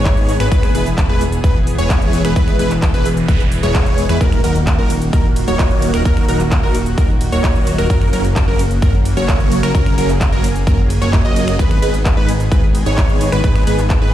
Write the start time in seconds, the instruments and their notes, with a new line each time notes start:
Already playing: analog synth bass G#1, analog synth pad D#3 B3 G#4, supersaw synth G#3 B3 D#4 G#4 C#5, digital synth lead C#5
0.05 kick, clap, closed hi-hat
0.17 closed hi-hat
0.29 open hi-hat
0.40 analog synth bass G#1, supersaw synth G#3 B3 D#4 G#4 B4, digital synth lead B4, finger snap, closed hi-hat
0.52 analog synth bass E1, analog synth pad E3, supersaw synth G#3 B3 B4, digital synth lead B4, kick, closed hi-hat
0.63 finger snap, closed hi-hat
0.75 analog synth bass E1, supersaw synth G#3 B3 E4 G#4 B4, digital synth lead B4, open hi-hat
0.86 closed hi-hat
0.98 kick, clap, closed hi-hat
1.09 analog synth bass E1, supersaw synth G#3 B3 E4 G#4 B4, digital synth lead B4
1.21 open hi-hat
1.32 closed hi-hat
1.44 analog synth bass E1, supersaw synth G#3 B3 E4 G#4 B4, digital synth lead B4, kick, closed hi-hat
1.67 open hi-hat
1.78 analog synth bass E1, supersaw synth G#3 B3 E4 G#4 C#5, digital synth lead C#5, closed hi-hat
1.90 kick, clap, closed hi-hat
2.02 closed hi-hat
2.13 open hi-hat
2.25 analog synth bass E1, supersaw synth G#3 B3 E4 G#4 B4, digital synth lead B4, finger snap, closed hi-hat
2.36 analog synth bass E1, supersaw synth B3 E4 B4, digital synth lead B4, kick, closed hi-hat, noise sweep
2.48 finger snap, closed hi-hat
2.59 analog synth bass E1, supersaw synth G#3 B3 E4 G#4 B4, digital synth lead B4, open hi-hat
2.71 clap, closed hi-hat
2.82 kick, clap, closed hi-hat
2.94 analog synth bass E1, supersaw synth G#3 B3 E4 G#4 B4, digital synth lead B4, closed hi-hat
3.05 open hi-hat
3.17 closed hi-hat
3.28 analog synth bass E1, supersaw synth G#3 B3 E4 G#4 B4, digital synth lead B4, kick, closed hi-hat
3.40 closed hi-hat
3.52 open hi-hat
3.63 analog synth bass E1, supersaw synth G#3 B3 E4 G#4 C#5, digital synth lead C#5, closed hi-hat
3.75 finger snap, kick, clap, closed hi-hat
3.86 clap, closed hi-hat
3.98 open hi-hat
4.09 analog synth bass E2, supersaw synth G#3 B3 E4 G#4 B4, digital synth lead B4, finger snap, closed hi-hat
4.21 analog synth bass D#1, analog synth pad D#3 A#3 F#4, supersaw synth F#3 A#3 D#4 F#4 A#4, digital synth lead A#4, kick, closed hi-hat
4.32 finger snap, closed hi-hat
4.44 analog synth bass D#1, supersaw synth F#3 A#3 D#4 F#4 A#4, digital synth lead A#4, open hi-hat, ride
4.55 closed hi-hat
4.67 kick, clap, closed hi-hat
4.78 analog synth bass D#1, supersaw synth F#3 A#3 D#4 F#4 A#4, digital synth lead A#4
4.90 open hi-hat, ride
5.02 closed hi-hat
5.13 supersaw synth F#3 A#3 D#4 F#4 A#4, digital synth lead A#4, kick, closed hi-hat
5.36 open hi-hat, ride
5.48 analog synth bass D#1, supersaw synth F#3 A#3 D#4 F#4 C#5, digital synth lead C#5, closed hi-hat
5.59 kick, clap, closed hi-hat
5.71 closed hi-hat
5.82 open hi-hat, ride
5.94 analog synth bass D#1, supersaw synth F#3 A#3 D#4 F#4 A#4, digital synth lead A#4, finger snap, closed hi-hat
6.05 analog synth bass D#1, supersaw synth F#3 A#3 D#4 A#4, digital synth lead A#4, kick, closed hi-hat
6.17 finger snap, closed hi-hat
6.28 analog synth bass D#1, supersaw synth F#3 A#3 D#4 F#4 A#4, digital synth lead A#4, open hi-hat, ride
6.40 clap, closed hi-hat
6.51 kick, clap, closed hi-hat
6.63 analog synth bass D#1, supersaw synth F#3 A#3 D#4 F#4 A#4, digital synth lead A#4
6.75 open hi-hat, ride
6.86 closed hi-hat
6.98 analog synth bass D#1, supersaw synth F#3 A#3 D#4 F#4 A#4, digital synth lead A#4, kick, closed hi-hat
7.21 open hi-hat, ride
7.32 analog synth bass D#1, supersaw synth F#3 A#3 D#4 F#4 C#5, digital synth lead C#5, closed hi-hat
7.44 kick, clap, closed hi-hat
7.55 closed hi-hat
7.67 open hi-hat, ride
7.78 analog synth bass D#1, supersaw synth F#3 A#3 D#4 F#4 A#4, digital synth lead A#4, finger snap, closed hi-hat
7.90 analog synth bass F#1, analog synth pad C#3 A#3, supersaw synth F#3 A#3 C#4 F#4 A#4, digital synth lead A#4, kick, closed hi-hat
8.01 finger snap, closed hi-hat
8.13 analog synth bass F#1, supersaw synth F#3 A#3 C#4 F#4 A#4, digital synth lead A#4, open hi-hat, ride
8.25 closed hi-hat
8.36 kick, clap, closed hi-hat
8.48 analog synth bass F#1, supersaw synth F#3 A#3 C#4 F#4 A#4, digital synth lead A#4
8.59 open hi-hat, ride
8.71 closed hi-hat
8.82 analog synth bass F#1, supersaw synth F#3 A#3 C#4 F#4 A#4, digital synth lead A#4, kick, closed hi-hat
9.05 open hi-hat, ride
9.17 analog synth bass F#1, supersaw synth F#3 A#3 C#4 F#4 C#5, digital synth lead C#5, closed hi-hat
9.28 kick, clap, closed hi-hat
9.40 closed hi-hat
9.52 open hi-hat, ride
9.63 analog synth bass F#1, supersaw synth F#3 A#3 C#4 F#4 A#4, digital synth lead A#4, finger snap, closed hi-hat
9.75 analog synth bass F#1, supersaw synth F#3 A#3 C#4 A#4, analog synth pad G#4, digital synth lead A#4, kick, closed hi-hat
9.86 finger snap, closed hi-hat
9.98 analog synth bass F#1, supersaw synth F#3 A#3 C#4 F#4 A#4, digital synth lead A#4, open hi-hat, ride
10.09 clap, closed hi-hat
10.21 kick, clap, closed hi-hat
10.32 analog synth bass F#1, supersaw synth F#3 A#3 C#4 F#4 A#4, digital synth lead A#4, closed hi-hat
10.44 open hi-hat, ride
10.56 closed hi-hat
10.67 analog synth bass F#1, supersaw synth F#3 A#3 C#4 F#4 A#4, digital synth lead A#4, kick, closed hi-hat
10.90 open hi-hat, ride
11.02 analog synth bass F#1, supersaw synth F#3 A#3 C#4 F#4 C#5, digital synth lead C#5, closed hi-hat
11.13 kick, clap, closed hi-hat
11.25 analog synth bass F#1, supersaw synth F#3 A#3 C#4 F#4 D#5, digital synth lead D#5, closed hi-hat
11.36 open hi-hat, ride
11.48 finger snap, closed hi-hat
11.59 analog synth bass G#1, analog synth pad D#3 B3, supersaw synth G#3 B3 D#4 G#4 B4, digital synth lead B4, kick, closed hi-hat
11.71 finger snap, closed hi-hat
11.82 analog synth bass G#1, supersaw synth G#3 B3 D#4 G#4 B4, digital synth lead B4, open hi-hat, ride
11.94 closed hi-hat
12.05 kick, clap, closed hi-hat
12.17 analog synth bass G#1, supersaw synth G#3 B3 D#4 G#4 B4, digital synth lead B4
12.29 open hi-hat, ride
12.40 closed hi-hat
12.52 analog synth bass G#1, supersaw synth G#3 B3 D#4 G#4 B4, digital synth lead B4, kick, closed hi-hat
12.75 open hi-hat, ride
12.86 analog synth bass G#1, supersaw synth G#3 B3 D#4 G#4 C#5, digital synth lead C#5, closed hi-hat
12.98 kick, clap, closed hi-hat
13.09 closed hi-hat
13.21 open hi-hat, ride
13.32 analog synth bass G#1, supersaw synth G#3 B3 D#4 G#4 B4, digital synth lead B4, finger snap, closed hi-hat
13.44 analog synth bass G#1, supersaw synth G#3 B3 D#4 G#4 B4, digital synth lead B4, kick, closed hi-hat
13.56 finger snap, closed hi-hat
13.67 analog synth bass G#1, supersaw synth G#3 B3 D#4 G#4 B4, digital synth lead B4, open hi-hat, ride
13.79 clap, closed hi-hat
13.90 kick, clap, closed hi-hat
14.02 analog synth bass G#1, supersaw synth G#3 B3 D#4 G#4 B4, digital synth lead B4